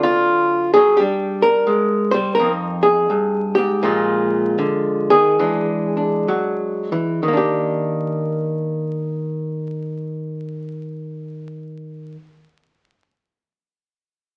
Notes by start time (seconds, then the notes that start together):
Already playing: D3 F#3 C4 D4
0.03 F4
0.74 F#3 G#4
0.97 G3 D4 G4
1.42 A#4
1.67 G#3
2.11 G3 C5
2.35 A#4
2.40 F2 C4 D#4
2.83 G#4
3.10 G2
3.55 G#2 G4
3.83 A#2 F3 G#3 F4
4.58 D3
5.10 D#3 G#4
5.39 E3 G#3 D4
5.97 D4
6.28 F#3
6.92 E3
7.23 D#3
7.28 A#3
7.33 D4 G4